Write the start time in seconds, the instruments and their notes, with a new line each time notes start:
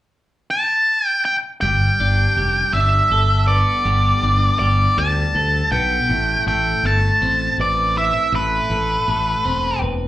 0.51 lead electric guitar A5
1.08 lead electric guitar G5
1.25 lead electric guitar G5
1.61 fingered electric bass G1, clean electric guitar G3, lead electric guitar G5
2.00 fingered electric bass G1, clean electric guitar D4
2.36 fingered electric bass F1, clean electric guitar G3
2.73 fingered electric bass G1, clean electric guitar D4, lead electric guitar E5
3.10 fingered electric bass G1, clean electric guitar A4
3.48 clean electric guitar B3, lead electric guitar D5
3.85 fingered electric bass G1, clean electric guitar G3
4.23 fingered electric bass G1, clean electric guitar D4
4.59 fingered electric bass G1, clean electric guitar G3, lead electric guitar D5
4.98 fingered electric bass D2, clean electric guitar D4, lead electric guitar A5
5.35 fingered electric bass D2, clean electric guitar A4
5.72 fingered electric bass B1, clean electric guitar B3, lead electric guitar G5
6.09 fingered electric bass A1, clean electric guitar A2
6.47 fingered electric bass A1, clean electric guitar A3, lead electric guitar G5
6.83 fingered electric bass G1, clean electric guitar A3, lead electric guitar A5
7.21 fingered electric bass A1, clean electric guitar C4
7.58 fingered electric bass A1, clean electric guitar B4, lead electric guitar D5
7.97 clean electric guitar E4, lead electric guitar E5
8.32 fingered electric bass A1, clean electric guitar A2, lead electric guitar B4
8.70 fingered electric bass A1, clean electric guitar A3
9.08 fingered electric bass A1, clean electric guitar A3
9.45 fingered electric bass E1, clean electric guitar C4
9.82 fingered electric bass E1, clean electric guitar B4